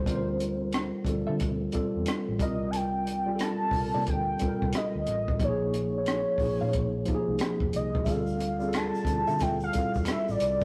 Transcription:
Already playing: G3 C4 F4 G4 A4 C5
0.06 D2 G3 C4 F4 A#4, kick, closed hi-hat
0.15 C5
0.40 closed hi-hat
0.73 cross-stick, closed hi-hat
1.05 D2 G3 C4 F4 A4, kick, closed hi-hat
1.27 D3 C4 F4 A4 E5
1.40 D2, kick, closed hi-hat
1.72 G3 C4 F4 A4, kick, closed hi-hat
1.96 E2
2.06 cross-stick, closed hi-hat
2.28 A1
2.39 C2 G3 C4 F4 A#4 D#5, kick, closed hi-hat
2.71 A5, closed hi-hat
2.76 G5
3.07 closed hi-hat
3.26 G3 C4 F4 G4
3.35 A4
3.39 A5, cross-stick, closed hi-hat
3.71 C2 G3 C4 F4 A4, kick, open hi-hat
3.81 A#4
3.94 C3 A#3 D#4 G4 D5
4.07 D2 G5, kick, closed hi-hat
4.39 G3 C4 F4 A4, kick, closed hi-hat
4.48 A#4
4.62 C2, kick
4.73 D#5, cross-stick, closed hi-hat
4.95 D2
5.07 A1, closed hi-hat
5.28 kick
5.40 A#1 F3 A#3 D#4 G4, kick, closed hi-hat
5.44 C#5
5.49 G#4
5.74 closed hi-hat
5.98 C#5
6.06 cross-stick, closed hi-hat
6.38 A#1 F3 A#3 D#4 G#4, kick, open hi-hat
6.61 A#2 C#4 G#4 C5 F5
6.73 A#1, kick, closed hi-hat
7.05 F3 A#3 D#4 G4, kick, closed hi-hat
7.15 G#4
7.28 C2
7.39 cross-stick, closed hi-hat
7.60 F1, kick
7.73 C2 D#5, closed hi-hat
7.95 kick
8.04 D2 G3 C4 F4 G#4 E5, kick, closed hi-hat, shaker
8.10 F5
8.14 A4
8.26 shaker
8.40 closed hi-hat, shaker
8.59 G3 C4 F4 G#4, shaker
8.69 A4
8.73 A5, finger snap, cross-stick, closed hi-hat, shaker
8.95 shaker
9.05 D2 G3 C4 E4 A4, kick, closed hi-hat, shaker
9.14 F4
9.27 D3 C4 F4 A4 E5, shaker
9.39 D2 C4 F4 A4 E5 G5, kick, closed hi-hat, shaker
9.60 F5, shaker
9.72 G3 C4 E4 A4, kick, closed hi-hat, shaker
9.81 F4
9.94 E2, kick, shaker
10.05 finger snap, cross-stick, closed hi-hat, shaker
10.10 E5
10.28 A1 D5, shaker
10.40 C2, closed hi-hat, shaker
10.61 shaker

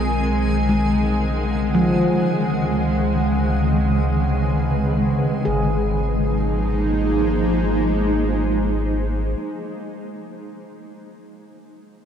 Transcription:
Already playing: B1 C#3 D#3 G#3 C4 G#4 A#4 G#5
0.54 F#5
0.69 G#3
1.75 F3
2.28 C#2
3.68 B4
5.43 G#1 F3 G#3 D#4 G#4
5.63 A#3
5.78 D#4
5.93 G#4
6.07 C5

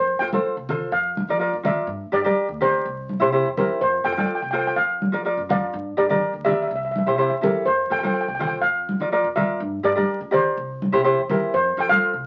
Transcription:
Already playing: F2
0.19 F2 F4 A4 C5 G5
0.33 F4 A4 C5, high conga
0.57 C2
0.69 F4 A4 C5, low conga
0.92 F2 F5
1.17 high conga
1.28 F3 F4 A#4 D5
1.39 F4 A#4 D5
1.53 F2
1.63 F4 A#4 D5 E5, high conga, low conga
1.87 G2
2.12 G2 G4 A#4 D5
2.24 G4 A#4 D5, high conga
2.49 D2
2.61 G4 A#4 C5 D5, low conga
2.85 C2
3.09 high conga
3.20 C3 E4 G4 C5
3.32 E4 G4 C5
3.45 E2
3.57 E4 G4 A#4 C5, high conga, low conga
3.81 F2 C5
4.04 F2 F4 A4 C5 G5
4.13 G5
4.17 F4 A4 D5 G5, high conga
4.26 G5
4.35 G5
4.42 C2 G5
4.51 F4 A4 C5 G5
4.59 G5
4.67 G5
4.76 F2 F5
5.02 high conga
5.12 F3 F4 A#4 D5
5.25 F4 A#4 D5
5.37 F#2
5.49 F4 A#4 D5 F5, high conga, low conga
5.73 G2
5.97 G2 G4 A#4 D5
6.09 G4 A#4 D5, high conga, low conga
6.33 D2
6.44 G4 A#4 D5 E5, high conga, low conga
6.52 E5
6.62 E5
6.68 C2 E5
6.76 E5
6.85 E5
6.91 E5
6.96 E5, high conga
7.07 C3 E4 G4 C5 E5
7.16 E4 G4 C5 E5
7.22 E5
7.30 E2 E5
7.41 E4 G4 A4 A#4, high conga, low conga
7.66 F2 C5
7.90 F2 F4 A4 C5 G5
7.99 G5
8.03 F4 A4 C5 G5, high conga
8.14 G5
8.21 G5
8.28 C2 G5
8.35 G5
8.39 F4 A4 C5 G5, low conga
8.47 G5
8.61 F2 F5
8.89 high conga
9.00 F3 F4 A#4 D5
9.12 F4 A#4 D5
9.24 F2
9.36 F4 A#4 D5 E5, high conga, low conga
9.60 G2
9.83 G2 G4 A#4 D5
9.95 G4 A#4 D5, high conga
10.20 C#2
10.31 G4 A#4 C5 D5, low conga
10.57 C2
10.82 high conga
10.92 C3 E4 G4 C5
11.04 E4 G4 C5
11.18 E2
11.29 E4 G4 A#4 C5, high conga, low conga
11.54 F2 C5
11.77 F2 F4 A4 C5 G5
11.89 F4 A4 C5 F5, high conga
12.14 C2

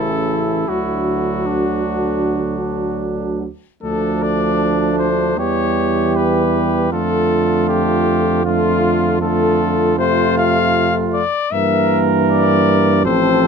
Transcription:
Already playing: A1 C#3 E3 E4 A4
0.68 D2 D3 F#3 F#4
1.46 D4
3.83 D2 F3 A3 D4 A4
4.23 D5
4.99 C5
5.38 E2 E3 G3 G4 C#5
6.16 B4
6.91 F2 D3 A3 F4 A4
7.69 G4
8.44 D3 A3 F4
9.21 D3 A3 F4 A4
9.98 C3 A3 F4 C5
10.38 F5
11.14 D5
11.52 G2 E3 A#3 A#4 E5
12.30 D5
13.05 A1 F3 C4 A4 C5

